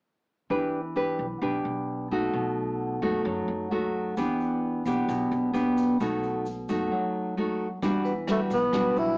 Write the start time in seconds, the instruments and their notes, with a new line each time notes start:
0.50 upright bass E2, nylon-string guitar E3 D4 G4 B4
0.96 nylon-string guitar D4 G4 B4
1.19 upright bass B1
1.41 upright bass B1, nylon-string guitar B2 D4 G4 B4
1.65 upright bass B1
2.11 nylon-string guitar A3 D#4 F#4
2.33 upright bass B1, nylon-string guitar B2
3.02 upright bass F#2, nylon-string guitar A3 D#4 F#4
3.25 upright bass F#2, nylon-string guitar F#3
3.48 upright bass F#2
3.71 nylon-string guitar A3 D#4 F#4
4.17 upright bass E2, nylon-string guitar E3 B3 D4 G4, shaker
4.40 shaker
4.85 upright bass B1, nylon-string guitar B3 D4 G4, shaker
5.08 upright bass B1, nylon-string guitar B2, shaker
5.31 upright bass B1, shaker
5.53 nylon-string guitar B3 D4 G4, shaker
5.77 shaker
6.00 upright bass B1, nylon-string guitar B2 A3 D#4 F#4, shaker
6.23 shaker
6.46 shaker
6.69 upright bass F#2, nylon-string guitar A3 D#4 F#4, shaker
6.91 nylon-string guitar F#3
7.37 nylon-string guitar A3 D#4 F#4
7.82 upright bass E2, nylon-string guitar E3 G3 D4 F#4, kick, closed hi-hat, shaker
8.05 vibraphone B4, closed hi-hat, shaker
8.28 nylon-string guitar G3 D4 F#4, tenor saxophone A3, cross-stick, closed hi-hat, shaker
8.50 upright bass B1, tenor saxophone B3, kick, closed hi-hat, shaker
8.73 upright bass B1, nylon-string guitar B2 G3 D4 F#4, kick, cross-stick, closed hi-hat, shaker
8.96 upright bass B1, tenor saxophone E4, closed hi-hat, shaker